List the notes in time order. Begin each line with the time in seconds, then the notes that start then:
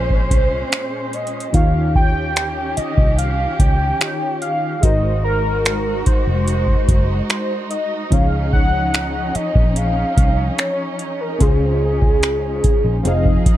Already playing: A#1 A#2 G#3 C#4 F4 G#4 C5
0.10 kick
0.31 C2, kick, closed hi-hat
0.72 C5, finger snap, closed hi-hat
1.13 D#5, closed hi-hat
1.27 closed hi-hat
1.40 closed hi-hat
1.53 D#2 D#3 C#4 D#4 F4 G4 F5, kick, closed hi-hat
1.57 C#5
1.95 G5, kick
2.36 finger snap, closed hi-hat
2.77 D#5, muted fingered electric bass stroke, closed hi-hat
2.98 C2, kick
3.18 F5, closed hi-hat
3.59 C#2 G5, kick, closed hi-hat
4.00 D#3 D#4 F4 G4 C#5, finger snap, closed hi-hat
4.42 F5, closed hi-hat
4.81 G#1 G#3 D#4 F#4 A#4 D#5, kick, closed hi-hat
4.85 C5
5.24 A#4
5.65 finger snap, closed hi-hat
6.06 C5, muted fingered electric bass stroke, kick, closed hi-hat
6.27 F1
6.48 closed hi-hat
6.68 kick
6.88 F#1, kick, closed hi-hat
7.30 C5, finger snap, closed hi-hat
7.71 D#5, closed hi-hat
8.10 C#2 F3 C#4 D#4 G#4 F5, kick, closed hi-hat
8.14 C#5
8.53 F#5, kick
8.94 finger snap, closed hi-hat
9.35 D#5, muted fingered electric bass stroke, closed hi-hat
9.55 A#1, kick
9.76 F5, closed hi-hat
10.17 C2, kick, closed hi-hat
10.58 C#5, finger snap, closed hi-hat
10.99 closed hi-hat
11.21 A#4
11.39 C#2 C#3 G#3 C#4 F4 G#4, kick, closed hi-hat
11.43 C5
12.02 kick
12.23 finger snap, closed hi-hat
12.64 muted fingered electric bass stroke, kick, closed hi-hat
12.85 A#1
13.03 F1 F3 C4 D#4 G#4 D#5, closed hi-hat
13.08 F5
13.25 kick
13.46 muted fingered electric bass stroke, kick, closed hi-hat